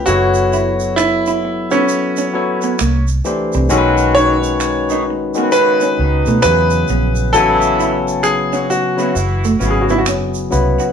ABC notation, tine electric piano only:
X:1
M:4/4
L:1/16
Q:"Swing 16ths" 1/4=66
K:F#m
V:1 name="Tine electric piano"
[F,B,EAc]6 z [F,B,EAe]3 [F,B,EAc]2 z2 [E,A,D=G=c]2 | [^D,G,CFAB]6 z [D,G,CF^AB]4- [D,G,CFAB] [C,F,B,E=G^G]3 z | [C,F,B,Eg]6 z [C,F,B,EB] z2 [C,F,B,EFG]3 z [C,F,B,EB]2 |]